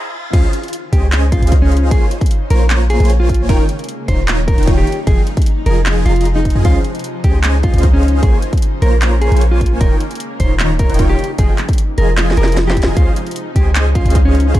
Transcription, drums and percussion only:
0.33 kick, closed hi-hat, crash
0.53 closed hi-hat
0.64 closed hi-hat
0.68 closed hi-hat
0.73 closed hi-hat
0.93 kick, closed hi-hat
1.12 clap, closed hi-hat
1.32 kick, closed hi-hat
1.43 closed hi-hat
1.47 closed hi-hat
1.52 kick, closed hi-hat
1.72 closed hi-hat
1.77 closed hi-hat
1.91 kick, closed hi-hat
2.11 closed hi-hat
2.21 kick, closed hi-hat
2.26 closed hi-hat
2.31 closed hi-hat
2.50 closed hi-hat
2.70 clap, closed hi-hat
2.90 closed hi-hat
3.00 closed hi-hat
3.05 closed hi-hat
3.10 closed hi-hat
3.29 kick, closed hi-hat
3.34 closed hi-hat
3.49 kick, closed hi-hat
3.69 closed hi-hat
3.79 closed hi-hat
3.84 closed hi-hat
3.89 closed hi-hat
4.08 kick, closed hi-hat
4.28 clap, closed hi-hat
4.48 kick, closed hi-hat
4.58 closed hi-hat
4.63 closed hi-hat
4.67 kick, closed hi-hat
4.87 closed hi-hat
4.92 closed hi-hat
5.07 kick, closed hi-hat
5.27 closed hi-hat
5.37 kick, closed hi-hat
5.42 closed hi-hat
5.46 closed hi-hat
5.66 closed hi-hat
5.86 clap, closed hi-hat
6.06 closed hi-hat
6.16 closed hi-hat
6.21 closed hi-hat
6.25 closed hi-hat
6.45 kick, closed hi-hat
6.50 closed hi-hat
6.65 kick, closed hi-hat
6.84 closed hi-hat
6.95 closed hi-hat
6.99 closed hi-hat
7.04 closed hi-hat
7.24 kick, closed hi-hat
7.44 clap, closed hi-hat
7.63 kick, closed hi-hat
7.74 closed hi-hat
7.78 closed hi-hat
7.83 kick, closed hi-hat
8.03 closed hi-hat
8.08 closed hi-hat
8.23 kick, closed hi-hat
8.42 closed hi-hat
8.53 kick, closed hi-hat
8.58 closed hi-hat
8.62 closed hi-hat
8.82 closed hi-hat
9.02 clap, closed hi-hat
9.22 closed hi-hat
9.32 closed hi-hat
9.37 closed hi-hat
9.41 closed hi-hat
9.61 kick, closed hi-hat
9.66 closed hi-hat
9.81 kick, closed hi-hat
10.00 closed hi-hat
10.11 closed hi-hat
10.15 closed hi-hat
10.20 closed hi-hat
10.40 kick, closed hi-hat
10.60 clap, closed hi-hat
10.79 kick, closed hi-hat
10.90 closed hi-hat
10.94 closed hi-hat
10.99 kick, closed hi-hat
11.19 closed hi-hat
11.24 closed hi-hat
11.38 kick, closed hi-hat
11.58 clap, closed hi-hat
11.69 kick, closed hi-hat
11.73 closed hi-hat
11.78 closed hi-hat
11.98 closed hi-hat
12.17 snare, clap, closed hi-hat
12.31 snare
12.37 closed hi-hat
12.44 snare, closed hi-hat
12.52 closed hi-hat
12.57 snare, closed hi-hat
12.70 snare
12.77 kick, closed hi-hat
12.82 snare, closed hi-hat
12.97 kick, closed hi-hat
13.16 closed hi-hat
13.27 closed hi-hat
13.31 closed hi-hat
13.36 closed hi-hat
13.56 kick, closed hi-hat
13.75 clap, closed hi-hat
13.95 kick, closed hi-hat
14.06 closed hi-hat
14.10 closed hi-hat
14.15 kick, closed hi-hat
14.35 closed hi-hat
14.40 closed hi-hat
14.54 kick, closed hi-hat

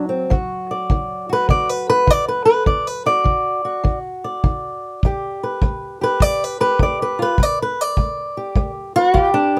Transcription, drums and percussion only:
0.31 kick
0.90 kick
1.49 kick
2.08 kick
2.66 kick
3.26 kick
3.85 kick
4.44 kick
5.03 kick
5.62 kick
6.20 kick
6.79 kick
7.38 kick
7.97 kick
8.55 kick
9.15 kick

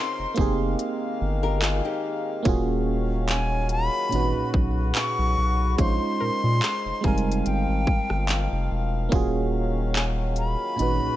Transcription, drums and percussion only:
0.36 kick, closed hi-hat
0.79 closed hi-hat
1.62 clap, closed hi-hat
2.45 kick, closed hi-hat
3.28 clap, closed hi-hat
3.69 closed hi-hat
4.12 closed hi-hat
4.54 kick
4.95 clap, closed hi-hat
5.78 kick, closed hi-hat
6.62 clap, closed hi-hat
7.04 kick, closed hi-hat
7.18 closed hi-hat
7.32 closed hi-hat
7.46 closed hi-hat
7.87 kick
8.10 cross-stick
8.29 clap, closed hi-hat
9.12 kick, closed hi-hat
9.95 clap, closed hi-hat
10.36 closed hi-hat
10.79 closed hi-hat

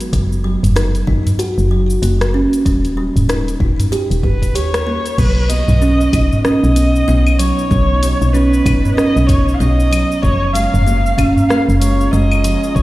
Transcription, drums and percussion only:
0.00 closed hi-hat, cabasa
0.13 kick, closed hi-hat, cabasa
0.32 cabasa
0.63 closed hi-hat, udu, cabasa
0.76 cross-stick, closed hi-hat, cabasa
0.95 closed hi-hat, cabasa
1.07 kick
1.26 closed hi-hat, udu, cabasa
1.39 closed hi-hat, cabasa
1.58 cabasa
1.90 cabasa
2.03 closed hi-hat, cabasa
2.21 cross-stick, closed hi-hat, cabasa
2.53 closed hi-hat, cabasa
2.66 kick, closed hi-hat, cabasa
2.85 closed hi-hat, cabasa
3.16 closed hi-hat, udu, cabasa
3.29 cross-stick, closed hi-hat, cabasa
3.48 closed hi-hat, cabasa
3.60 kick
3.79 closed hi-hat, udu, cabasa
3.93 closed hi-hat, cabasa
4.11 closed hi-hat, cabasa
4.23 kick, udu
4.42 kick, closed hi-hat, cabasa
4.56 closed hi-hat, cabasa
4.74 cross-stick, closed hi-hat, cabasa
5.06 closed hi-hat, cabasa
5.18 kick, crash, cabasa
5.50 closed hi-hat, cabasa
5.68 udu, cabasa
5.82 cabasa
6.01 cabasa
6.13 kick, closed hi-hat, cabasa, claves
6.32 udu, cabasa
6.45 cross-stick, cabasa
6.64 cabasa
6.76 closed hi-hat, cabasa
6.96 cabasa
7.08 cabasa
7.27 cabasa, claves
7.39 closed hi-hat, cabasa
7.59 cabasa
7.71 kick, cabasa
8.03 closed hi-hat, cabasa
8.22 cabasa
8.35 cabasa
8.54 cabasa
8.66 kick, closed hi-hat, cabasa, claves
8.85 udu, cabasa
8.98 cross-stick, cabasa
9.17 cabasa
9.29 kick, closed hi-hat, udu, cabasa
9.48 cabasa
9.61 cabasa
9.80 cabasa
9.93 closed hi-hat, cabasa, claves
10.12 cabasa
10.23 kick, cabasa
10.55 closed hi-hat, cabasa
10.74 udu, cabasa
10.87 cabasa
11.06 cabasa
11.18 kick, closed hi-hat, cabasa, claves
11.36 udu, cabasa
11.50 cross-stick, cabasa
11.69 cabasa
11.82 closed hi-hat, cabasa
12.01 cabasa
12.14 cabasa
12.32 cabasa, claves
12.44 closed hi-hat, cabasa
12.64 cabasa
12.76 kick, cabasa

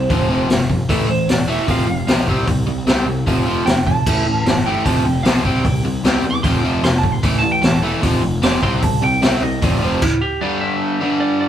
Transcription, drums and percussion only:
0.10 kick, open hi-hat
0.50 snare, open hi-hat
0.69 kick
0.89 kick, open hi-hat
1.29 snare, open hi-hat
1.68 kick, open hi-hat
2.08 snare, open hi-hat
2.28 kick
2.47 kick, open hi-hat
2.87 snare, open hi-hat
3.27 kick, open hi-hat
3.67 snare, open hi-hat
3.87 kick
4.07 kick, crash
4.46 snare, open hi-hat
4.86 kick, open hi-hat
5.25 snare, open hi-hat
5.45 kick
5.65 kick, open hi-hat
6.04 snare, open hi-hat
6.44 kick, open hi-hat
6.84 snare, open hi-hat
7.03 kick
7.23 kick, open hi-hat
7.63 snare, open hi-hat
8.03 kick, open hi-hat
8.43 snare, open hi-hat
8.63 kick
8.82 kick, open hi-hat
9.22 snare, open hi-hat
9.62 kick, open hi-hat
10.02 kick, crash

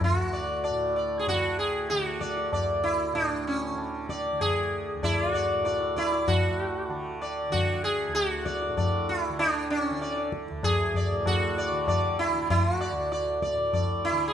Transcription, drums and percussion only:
0.01 tabla tin, tabla ge
0.64 tabla na
1.27 tabla tin, tabla ge
1.89 tabla te
2.05 tabla te
2.21 tabla ke
2.37 tabla te
2.53 tabla na, tabla ge
3.15 tabla na
3.78 tabla na
4.09 tabla ke
4.41 tabla na, tabla ge
5.03 tabla na, tabla ge
5.34 tabla ge
5.65 tabla te
5.80 tabla te
5.97 tabla ke
6.13 tabla te
6.28 tabla tin, tabla ge
6.90 tabla na
7.22 tabla na
7.54 tabla tin, tabla ge
8.15 tabla te
8.31 tabla te
8.46 tabla ke
8.62 tabla te
8.78 tabla na, tabla ge
9.39 tabla na
10.01 tabla te
10.16 tabla te
10.32 tabla ke
10.48 tabla te
10.63 tabla na, tabla ge
10.94 tabla ge
11.26 tabla na, tabla ge
11.57 tabla te
11.88 tabla na, tabla ge
12.19 tabla te
12.50 tabla tin, tabla ge
13.12 tabla te
13.28 tabla te
13.42 tabla ke
13.58 tabla te
13.73 tabla tin, tabla ge

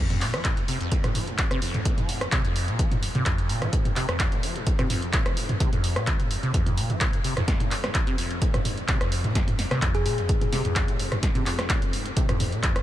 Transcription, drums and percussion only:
0.10 closed hi-hat, mid tom
0.21 clap, open hi-hat
0.34 cross-stick, closed hi-hat
0.44 kick, clap, closed hi-hat
0.57 closed hi-hat
0.68 open hi-hat
0.81 closed hi-hat
0.92 kick, closed hi-hat
1.04 cross-stick, closed hi-hat, mid tom
1.15 mid tom, open hi-hat
1.27 closed hi-hat
1.38 kick, clap, closed hi-hat
1.51 cross-stick, closed hi-hat
1.62 open hi-hat
1.74 closed hi-hat, mid tom
1.85 kick, closed hi-hat
1.98 closed hi-hat, mid tom
2.09 open hi-hat
2.21 cross-stick, closed hi-hat
2.32 kick, clap, closed hi-hat
2.45 closed hi-hat
2.56 open hi-hat
2.68 closed hi-hat
2.79 kick, closed hi-hat
2.92 closed hi-hat, mid tom
3.03 open hi-hat
3.15 closed hi-hat, mid tom
3.26 kick, clap, closed hi-hat
3.38 closed hi-hat
3.49 open hi-hat
3.62 cross-stick, closed hi-hat, mid tom
3.73 kick, closed hi-hat
3.85 closed hi-hat, mid tom
3.96 clap, open hi-hat
4.09 cross-stick, closed hi-hat
4.19 kick, clap, closed hi-hat
4.32 closed hi-hat
4.43 open hi-hat
4.56 closed hi-hat
4.67 kick, closed hi-hat
4.79 cross-stick, closed hi-hat, mid tom
4.90 mid tom, open hi-hat
5.02 closed hi-hat
5.13 kick, clap, closed hi-hat
5.26 cross-stick, closed hi-hat
5.37 open hi-hat
5.49 closed hi-hat, mid tom
5.60 kick, closed hi-hat
5.73 closed hi-hat, mid tom
5.84 open hi-hat
5.96 cross-stick, closed hi-hat
6.07 kick, clap, closed hi-hat
6.20 closed hi-hat
6.31 open hi-hat
6.43 closed hi-hat
6.54 kick, closed hi-hat
6.66 closed hi-hat, mid tom
6.78 open hi-hat
6.90 closed hi-hat, mid tom
7.01 kick, clap, closed hi-hat
7.13 closed hi-hat
7.24 open hi-hat
7.37 cross-stick, closed hi-hat, mid tom
7.48 kick, snare, closed hi-hat
7.60 closed hi-hat, mid tom
7.71 clap, open hi-hat
7.84 cross-stick, snare, closed hi-hat
7.94 kick, clap, closed hi-hat
8.07 closed hi-hat
8.18 open hi-hat
8.31 closed hi-hat
8.42 kick, closed hi-hat
8.54 cross-stick, closed hi-hat, mid tom
8.65 mid tom, open hi-hat
8.77 closed hi-hat
8.88 kick, clap, closed hi-hat
9.01 cross-stick, closed hi-hat
9.12 open hi-hat
9.24 closed hi-hat, mid tom
9.35 kick, snare, closed hi-hat
9.48 closed hi-hat, mid tom
9.59 snare, open hi-hat
9.71 cross-stick, snare, closed hi-hat
9.82 kick, clap, closed hi-hat
9.95 closed hi-hat
10.06 open hi-hat
10.18 closed hi-hat
10.29 kick, closed hi-hat
10.41 closed hi-hat, mid tom
10.53 snare, open hi-hat
10.65 closed hi-hat, mid tom
10.76 kick, clap, closed hi-hat
10.88 closed hi-hat
10.99 open hi-hat
11.12 cross-stick, closed hi-hat, mid tom
11.23 kick, snare, closed hi-hat
11.35 closed hi-hat, mid tom
11.46 clap, open hi-hat
11.59 cross-stick, snare, closed hi-hat
11.69 kick, clap, closed hi-hat
11.82 closed hi-hat
11.93 open hi-hat
12.06 closed hi-hat
12.17 kick, closed hi-hat
12.29 cross-stick, closed hi-hat, mid tom
12.40 mid tom, open hi-hat
12.52 closed hi-hat
12.63 kick, clap, closed hi-hat
12.76 cross-stick, closed hi-hat

